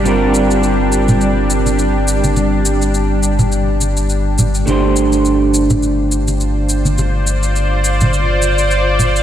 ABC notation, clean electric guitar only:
X:1
M:4/4
L:1/8
Q:"Swing 16ths" 1/4=104
K:Gm
V:1 name="Clean electric guitar"
[G,CFB]8- | [G,CFB]8 | [A,DGc]8- | [A,DGc]8 |]